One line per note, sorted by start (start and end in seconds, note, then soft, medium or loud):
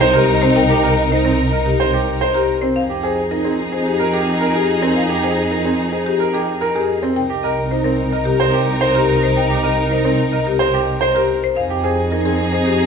0.00 2.61 C2 medium
0.00 2.58 D#4 medium
0.00 2.58 A#4 medium
0.00 0.18 C5 medium
0.00 0.18 C5 loud
0.14 0.32 G4 medium
0.14 0.32 A#4 medium
0.42 0.60 C4 medium
0.42 0.60 C5 medium
0.56 0.74 G5 medium
0.70 0.87 G4 medium
0.83 1.01 A#4 medium
0.83 1.01 D#5 medium
1.11 1.29 D#4 medium
1.11 1.29 C5 medium
1.25 1.43 C4 medium
1.25 1.42 A#4 medium
1.52 1.70 A#4 medium
1.52 1.70 D#5 medium
1.66 1.84 G4 medium
1.80 1.97 C5 medium
1.94 2.11 G4 medium
1.94 2.11 A#4 medium
2.21 2.39 C5 medium
2.35 2.52 G4 medium
2.35 2.52 A#4 medium
2.62 2.80 C4 medium
2.62 2.80 C5 medium
2.76 7.01 F2 medium
2.76 6.99 D#4 medium
2.76 6.99 G#4 medium
2.76 2.94 F5 medium
2.90 3.07 G4 medium
3.03 3.21 G#4 medium
3.03 3.22 C5 medium
3.31 3.49 D#4 medium
3.31 3.49 A#4 medium
3.45 3.62 C4 medium
3.45 3.62 G#4 medium
3.72 3.90 G#4 medium
3.72 3.90 C5 medium
3.86 4.04 G4 medium
4.00 4.17 A#4 medium
4.13 4.31 G4 medium
4.13 4.31 G#4 medium
4.41 4.59 A#4 medium
4.55 4.72 G4 medium
4.55 4.72 G#4 medium
4.82 5.00 C4 medium
4.82 5.00 A#4 medium
4.96 5.14 F5 medium
5.09 5.27 G4 medium
5.23 5.41 G#4 medium
5.23 5.41 C5 medium
5.51 5.69 D#4 medium
5.51 5.69 A#4 medium
5.64 5.83 C4 medium
5.64 5.82 G#4 medium
5.92 6.10 G#4 medium
5.92 6.10 C5 medium
6.06 6.24 G4 medium
6.20 6.38 A#4 medium
6.33 6.51 G4 medium
6.33 6.52 G#4 medium
6.61 6.79 A#4 medium
6.75 6.93 G4 medium
6.75 6.93 G#4 medium
7.02 7.20 C4 medium
7.02 7.20 A#4 medium
7.16 11.42 C2 medium
7.16 11.38 D#4 medium
7.16 11.38 A#4 medium
7.16 7.34 G5 medium
7.30 7.48 G4 medium
7.43 7.62 A#4 medium
7.43 7.61 D#5 medium
7.71 7.89 D#4 medium
7.71 7.89 C5 medium
7.84 8.03 C4 medium
7.84 8.03 A#4 medium
8.12 8.30 A#4 medium
8.12 8.30 D#5 medium
8.25 8.44 G4 medium
8.40 8.58 C5 medium
8.53 8.71 G4 medium
8.53 8.71 A#4 medium
8.81 8.99 C5 medium
8.95 9.13 G4 medium
8.95 9.13 A#4 medium
9.23 9.41 C5 medium
9.36 9.54 G5 medium
9.50 9.68 G4 medium
9.63 9.81 A#4 medium
9.63 9.82 D#5 medium
9.91 10.09 D#4 medium
9.91 10.09 C5 medium
10.04 10.23 C4 medium
10.04 10.23 A#4 medium
10.32 10.50 A#4 medium
10.32 10.51 D#5 medium
10.47 10.64 G4 medium
10.59 10.78 C5 medium
10.73 10.92 G4 medium
10.73 10.92 A#4 medium
11.01 11.19 C5 medium
11.01 11.20 C5 medium
11.15 11.33 G4 medium
11.15 11.33 A#4 medium
11.44 11.61 C5 medium
11.56 12.86 F2 medium
11.56 12.86 D#4 medium
11.56 12.86 G#4 medium
11.56 11.74 F5 medium
11.70 11.88 G4 medium
11.84 12.02 G#4 medium
11.84 12.02 C5 medium
12.11 12.29 D#4 medium
12.11 12.30 A#4 medium
12.25 12.43 C4 medium
12.25 12.43 G#4 medium
12.52 12.71 G#4 medium
12.52 12.71 C5 medium
12.66 12.84 G4 medium